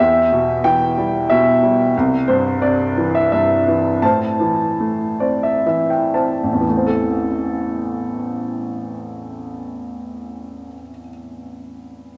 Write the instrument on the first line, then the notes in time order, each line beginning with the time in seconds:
grand piano
Already playing: E5
0.00 E2 G4
0.32 B2
0.64 E3 G5
0.98 G3
1.30 B2 E5
1.63 G3
1.97 C2
2.28 G2 C5
2.62 C3 D5
2.97 E3
3.15 E5
3.32 G2 E5
3.68 E3
4.02 A2 C5 A5
4.40 E3
4.80 A3
5.20 C4 D5
5.43 E5
5.66 E3 E5
5.90 G5
6.14 C4 A5
6.43 A1
6.52 E2
6.60 E3
6.69 A3
6.77 C4
6.87 A4